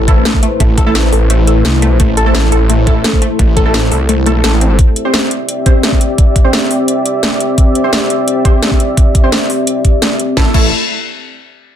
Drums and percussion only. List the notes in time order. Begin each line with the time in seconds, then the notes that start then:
0.08 kick, closed hi-hat
0.25 snare, closed hi-hat
0.34 kick
0.43 closed hi-hat
0.60 kick, closed hi-hat
0.78 kick, closed hi-hat
0.95 snare, closed hi-hat
1.13 open hi-hat
1.30 closed hi-hat
1.47 closed hi-hat
1.65 snare, closed hi-hat
1.82 closed hi-hat
2.00 kick, closed hi-hat
2.17 closed hi-hat
2.35 snare, closed hi-hat
2.52 closed hi-hat
2.70 closed hi-hat
2.87 kick, closed hi-hat
3.04 snare, closed hi-hat
3.13 kick
3.22 closed hi-hat
3.39 kick, closed hi-hat
3.57 kick, closed hi-hat
3.74 snare, closed hi-hat
3.92 open hi-hat
4.09 closed hi-hat
4.26 closed hi-hat
4.44 snare, closed hi-hat
4.61 closed hi-hat
4.79 kick, closed hi-hat
4.96 closed hi-hat
5.14 snare, closed hi-hat
5.31 closed hi-hat
5.49 closed hi-hat
5.66 kick, closed hi-hat
5.83 snare, closed hi-hat
5.92 kick
6.01 closed hi-hat
6.18 kick, closed hi-hat
6.36 kick, closed hi-hat
6.53 snare, closed hi-hat
6.71 open hi-hat
6.88 closed hi-hat
7.06 closed hi-hat
7.23 snare, closed hi-hat
7.40 closed hi-hat
7.58 kick, closed hi-hat
7.75 closed hi-hat
7.93 snare, closed hi-hat
8.10 closed hi-hat
8.28 closed hi-hat
8.45 kick, closed hi-hat
8.63 snare, closed hi-hat
8.71 kick
8.80 closed hi-hat
8.97 kick, closed hi-hat
9.15 kick, closed hi-hat
9.32 snare, closed hi-hat
9.50 open hi-hat
9.67 closed hi-hat
9.85 kick, closed hi-hat
10.02 snare, closed hi-hat
10.19 closed hi-hat
10.37 kick, snare
10.54 kick, crash